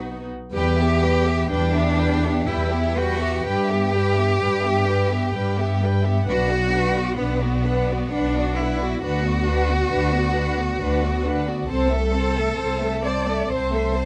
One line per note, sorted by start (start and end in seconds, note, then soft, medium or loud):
0.00 0.32 B1 medium
0.00 0.28 B3 medium
0.00 0.28 D#4 medium
0.00 0.28 F#4 medium
0.00 0.28 B4 medium
0.53 1.38 E2 medium
0.53 0.77 G3 medium
0.53 1.46 G4 loud
0.53 0.77 B4 medium
0.53 0.77 G5 medium
0.78 1.03 B3 medium
0.78 1.03 G4 medium
0.78 1.02 E5 medium
1.03 1.27 G3 medium
1.03 1.27 B4 medium
1.03 1.26 G5 medium
1.25 1.51 B3 medium
1.25 1.50 G4 medium
1.25 1.50 E5 medium
1.50 2.35 E2 medium
1.50 1.73 G3 medium
1.50 2.47 D4 loud
1.50 1.72 B4 medium
1.50 1.73 G5 medium
1.74 1.99 B3 medium
1.74 1.98 G4 medium
1.74 1.98 E5 medium
1.99 2.24 G3 medium
1.99 2.23 B4 medium
1.99 2.23 G5 medium
2.22 2.47 B3 medium
2.22 2.47 G4 medium
2.22 2.47 E5 medium
2.46 3.33 E2 medium
2.46 2.70 G3 medium
2.46 2.96 E4 medium
2.46 2.70 B4 medium
2.46 2.70 G5 medium
2.71 2.96 B3 medium
2.71 2.96 G4 medium
2.71 2.96 E5 medium
2.96 3.21 G3 medium
2.96 3.45 F#4 loud
2.96 3.21 B4 medium
2.96 3.21 G5 medium
3.19 3.45 B3 medium
3.19 3.45 G4 medium
3.19 3.44 E5 medium
3.42 4.29 G2 medium
3.42 3.67 G3 medium
3.42 5.82 G4 loud
3.42 3.67 B4 medium
3.42 3.66 G5 medium
3.68 3.93 B3 medium
3.68 3.93 G4 medium
3.68 3.93 E5 medium
3.91 4.17 G3 medium
3.91 4.16 B4 medium
3.91 4.16 G5 medium
4.15 4.41 B3 medium
4.15 4.40 G4 medium
4.15 4.40 E5 medium
4.39 5.23 G2 medium
4.39 4.63 G3 medium
4.39 4.62 B4 medium
4.39 4.62 G5 medium
4.62 4.88 B3 medium
4.62 4.87 G4 medium
4.62 4.87 E5 medium
4.85 5.11 G3 medium
4.85 5.11 B4 medium
4.85 5.10 G5 medium
5.08 5.34 B3 medium
5.08 5.35 G4 medium
5.08 5.33 E5 medium
5.33 6.16 G2 medium
5.33 5.57 G3 medium
5.33 5.57 B4 medium
5.33 5.55 G5 medium
5.58 5.82 B3 medium
5.58 5.81 G4 medium
5.58 5.81 E5 medium
5.81 6.04 G3 medium
5.81 6.05 B4 medium
5.81 6.04 G5 medium
6.04 6.27 B3 medium
6.04 6.27 G4 medium
6.04 6.27 E5 medium
6.26 7.06 B1 medium
6.26 6.48 D4 medium
6.26 7.14 F#4 loud
6.26 6.48 B4 medium
6.26 6.47 F#5 medium
6.49 6.72 B3 medium
6.49 6.72 F#4 medium
6.49 6.72 D5 medium
6.72 6.95 D4 medium
6.72 6.95 B4 medium
6.72 6.94 F#5 medium
6.94 7.18 B3 medium
6.94 7.18 F#4 medium
6.94 7.17 D5 medium
7.17 7.99 B1 medium
7.17 8.11 B3 medium
7.17 7.40 D4 medium
7.17 7.39 B4 medium
7.17 7.38 F#5 medium
7.39 7.65 B3 medium
7.39 7.64 F#4 medium
7.39 7.63 D5 medium
7.63 7.88 D4 medium
7.63 7.88 B4 medium
7.63 7.86 F#5 medium
7.87 8.11 B3 medium
7.87 8.11 F#4 medium
7.87 8.10 D5 medium
8.10 8.91 B1 medium
8.10 8.57 D4 loud
8.10 8.33 D4 medium
8.10 8.33 B4 medium
8.10 8.32 F#5 medium
8.33 8.57 B3 medium
8.33 8.56 D5 medium
8.37 8.58 F#4 medium
8.56 8.80 D4 medium
8.56 9.02 E4 medium
8.56 8.80 B4 medium
8.56 8.79 F#5 medium
8.79 9.02 B3 medium
8.79 9.02 F#4 medium
8.79 9.01 D5 medium
9.01 9.80 D2 medium
9.01 9.23 D4 medium
9.01 11.22 F#4 loud
9.01 9.23 B4 medium
9.01 9.23 F#5 medium
9.24 9.46 B3 medium
9.24 9.47 F#4 medium
9.24 9.47 D5 medium
9.46 9.68 D4 medium
9.46 9.69 B4 medium
9.46 9.69 F#5 medium
9.68 9.91 B3 medium
9.68 9.90 F#4 medium
9.68 9.91 D5 medium
9.90 10.70 D2 medium
9.90 10.12 D4 medium
9.90 10.12 B4 medium
9.90 10.11 F#5 medium
10.13 10.35 B3 medium
10.13 10.36 F#4 medium
10.13 10.35 D5 medium
10.35 10.58 D4 medium
10.35 10.58 B4 medium
10.35 10.58 F#5 medium
10.57 10.82 B3 medium
10.57 10.81 F#4 medium
10.57 10.80 D5 medium
10.80 11.59 D2 medium
10.80 11.02 D4 medium
10.80 11.02 B4 medium
10.80 11.02 F#5 medium
11.04 11.26 B3 medium
11.04 11.26 F#4 medium
11.04 11.27 D5 medium
11.25 11.48 D4 medium
11.25 11.48 B4 medium
11.25 11.48 F#5 medium
11.48 11.69 B3 medium
11.48 11.70 F#4 medium
11.48 11.70 D5 medium
11.69 12.48 C2 medium
11.69 11.90 C4 medium
11.69 13.01 A4 loud
11.69 11.90 C5 medium
11.69 11.90 A5 medium
11.90 12.14 A3 medium
11.90 12.14 A4 medium
11.90 12.13 E5 medium
12.14 12.36 C4 medium
12.14 12.37 C5 medium
12.14 12.36 A5 medium
12.36 12.59 A3 medium
12.36 12.59 A4 medium
12.36 12.59 E5 medium
12.58 13.39 C2 medium
12.58 12.80 C4 medium
12.58 12.80 C5 medium
12.58 12.80 A5 medium
12.81 13.05 A3 medium
12.81 13.05 A4 medium
12.81 13.04 E5 medium
13.05 13.28 C4 medium
13.05 13.28 C5 medium
13.05 13.50 D5 medium
13.05 13.28 A5 medium
13.27 13.50 A3 medium
13.27 13.51 A4 medium
13.27 13.50 E5 medium
13.50 14.05 C2 medium
13.50 13.71 C4 medium
13.50 14.05 C5 medium
13.50 13.72 C5 medium
13.50 13.71 A5 medium
13.73 13.96 A3 medium
13.73 13.95 A4 medium
13.73 13.96 E5 medium
13.95 14.05 C4 medium
13.95 14.05 C5 medium
13.95 14.05 A5 medium